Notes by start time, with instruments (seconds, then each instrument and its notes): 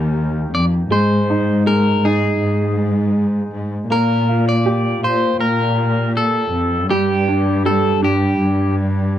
Already playing: cello section D#2, grand piano D#3 A#3 G4, clean electric guitar A#4
0.53 cello section F2, clean electric guitar D5
0.90 cello section G#2, grand piano G#3, clean electric guitar C5
1.30 grand piano D#4
1.66 grand piano G#3, clean electric guitar A#4
2.02 cello section G#2, grand piano D#4, clean electric guitar G#4
2.40 cello section G#2
3.51 cello section G#2
3.89 cello section A#2, grand piano A#3, clean electric guitar A#4
4.29 grand piano F4
4.49 clean electric guitar D5
4.66 grand piano G4
5.02 cello section A#2, grand piano F4, clean electric guitar C5
5.39 cello section A#2, clean electric guitar A#4
6.17 clean electric guitar A4
6.52 cello section F2
6.89 cello section G2, grand piano G3, clean electric guitar G4
7.28 grand piano D4
7.65 grand piano G3, clean electric guitar A4
8.01 cello section G2, grand piano D4, clean electric guitar G4
8.39 cello section G2